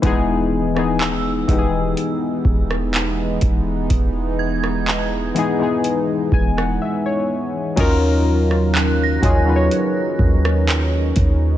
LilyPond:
<<
  \new Staff \with { instrumentName = "Synth bell" } { \time 4/4 \key fes \lydian \tempo 4 = 62 r4 e'''2~ e'''16 r8. | r8 gis'''2~ gis'''16 r4 r16 | r4 ges'''16 bes'''2~ bes'''16 r8 | }
  \new Staff \with { instrumentName = "Synth keys" } { \time 4/4 \key fes \lydian << { r1 | r2 r8 gis''16 ges''16 e''16 des''8. | r1 | } \\ { <e gis b dis' gis'>8 r16 <e gis b dis' gis'>8 r16 <e gis b dis' g' gis'>4. r4 | r4. <e gis b dis' gis'>16 <e gis b dis' gis'>4. r8. | <ges des' ees' f' bes'>4 r8 <ges des' ees' f' aes'>16 <ges des' ees' f' ces'' des''>4. r8. | } >> }
  \new Staff \with { instrumentName = "Analog synth pad" } { \time 4/4 \key fes \lydian << { e1~ | e1 | f'2 ees'2 | } \\ { <gis b dis'>1~ | <gis b dis'>1 | <ees ges des'>1 | } >> }
  \new Staff \with { instrumentName = "808-style bass" } { \clef bass \time 4/4 \key fes \lydian e,,4. e,,8 r8 e,,4 e,,8 | e,,4. r4 e,,8 r4 | ees,4. ees,8 r8 ees,4 ees,8 | }
  \new DrumStaff \with { instrumentName = "Drums" } \drummode { \time 4/4 <hh bd>8. ss16 hc8 <hh bd>8 hh8 bd16 ss16 <hc hh>8 <hh bd>8 | <hh bd>8. ss16 hc8 hh8 hh8 bd16 ss16 r4 | <cymc hh bd>8. ss16 hc8 <hh bd>8 hh8 bd16 ss16 <hc hh>8 <hh bd>8 | }
>>